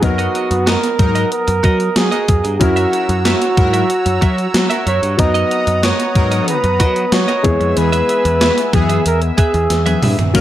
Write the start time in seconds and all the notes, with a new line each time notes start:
Already playing: F#5 A#5
0.01 F#2 F#3 B3 D#4 F#4 A#4 D#6, muted clean electric guitar stroke, kick, closed hi-hat
0.18 F#4 A#4 D#5, closed hi-hat
0.34 F#4 A#4 D#5, closed hi-hat
0.51 F#2, muted clean electric guitar stroke, closed hi-hat
0.66 F#4 A#4 D#5, snare, closed hi-hat
0.83 muted clean electric guitar stroke, closed hi-hat
0.99 G#2 F#3 D#4 A#4, muted clean electric guitar stroke, kick, closed hi-hat
1.15 F#4 A#4 D#5, closed hi-hat
1.32 A#4, closed hi-hat
1.47 F#2, muted clean electric guitar stroke, closed hi-hat
1.63 F#3 F#4 A#4 D#5, kick, closed hi-hat
1.80 muted clean electric guitar stroke, closed hi-hat
1.96 F#3 G#4, muted clean electric guitar stroke, snare, closed hi-hat
2.12 F#4 A#4 D#5, closed hi-hat
2.28 F#2, kick, closed hi-hat
2.44 G2, muted clean electric guitar stroke, closed hi-hat
2.55 G#4
2.59 F#2 F#3 C#4 E4 F#4 A#4 C#5 F#5 A#5 E6, muted clean electric guitar stroke, kick, closed hi-hat
2.76 F#4 A#4 E5, closed hi-hat
2.92 F#4 A#4 E5, closed hi-hat
3.09 F#2, muted clean electric guitar stroke, closed hi-hat
3.25 F#4 A#4 E5, snare, closed hi-hat
3.41 muted clean electric guitar stroke, closed hi-hat
3.57 G#2 F#3 E4 A#4, muted clean electric guitar stroke, kick, closed hi-hat
3.73 F#4 A#4 E5, closed hi-hat
3.90 closed hi-hat
4.05 F#2, muted clean electric guitar stroke, closed hi-hat
4.21 F#3 F#4 A#4 E5, kick, closed hi-hat
4.38 muted clean electric guitar stroke, closed hi-hat
4.54 F#3, muted clean electric guitar stroke, snare, closed hi-hat
4.70 F#4 A#4 E5, closed hi-hat
4.86 F#2 F#4 A#4 C#5 E5, closed hi-hat
5.02 G2, muted clean electric guitar stroke, closed hi-hat
5.17 F#2 F#3 B3 D#4 A#4 D#5 A#5 D#6, muted clean electric guitar stroke, kick, closed hi-hat
5.34 F#4 A#4 D#5, closed hi-hat
5.51 F#4 A#4 D#5, closed hi-hat
5.67 F#2, closed hi-hat
5.83 F#4 A#4 C#5 D#5, snare, closed hi-hat
5.99 muted clean electric guitar stroke, closed hi-hat
6.15 G#2 F#3 D#4 A#4, muted clean electric guitar stroke, kick, closed hi-hat
6.31 F#4 A#4 D#5, closed hi-hat
6.48 B4, closed hi-hat
6.64 F#2, muted clean electric guitar stroke, closed hi-hat
6.80 F#3 F#4 A#4 D#5, kick, closed hi-hat
6.96 muted clean electric guitar stroke, closed hi-hat
7.12 F#3 C#5, muted clean electric guitar stroke, snare, closed hi-hat
7.28 F#4 A#4 D#5, closed hi-hat
7.43 E2 G#3 B3 E4 G#4 E5 G#5 E6, kick, closed hi-hat
7.60 F2, muted clean electric guitar stroke, closed hi-hat
7.77 E2 E3 B3 G#4 B4, muted clean electric guitar stroke, closed hi-hat
7.92 G#4 B4 E5, closed hi-hat
8.09 G#4 B4 E5, closed hi-hat
8.25 E2, closed hi-hat
8.41 G#4 B4 E5, snare, closed hi-hat
8.57 muted clean electric guitar stroke, closed hi-hat
8.73 F#2 E3 B3 G#4, muted clean electric guitar stroke, kick, closed hi-hat
8.89 G#4 B4 E5, closed hi-hat
9.06 E2 A#4, closed hi-hat
9.22 muted clean electric guitar stroke, closed hi-hat
9.38 G#4 B4 E5, muted picked electric bass stroke, kick, closed hi-hat
9.54 E2, muted clean electric guitar stroke, closed hi-hat
9.70 E2, muted clean electric guitar stroke, snare, closed hi-hat
9.86 G#4 B4 E5, closed hi-hat, high tom
10.02 G2 G#4 B4 E5, mid tom, open hi-hat
10.18 muted clean electric guitar stroke, closed hi-hat, floor tom
10.34 F#2 F#3 A#3 C#4 F#4 A#4 C#5 F#5 C#6, muted clean electric guitar stroke, kick, closed hi-hat, crash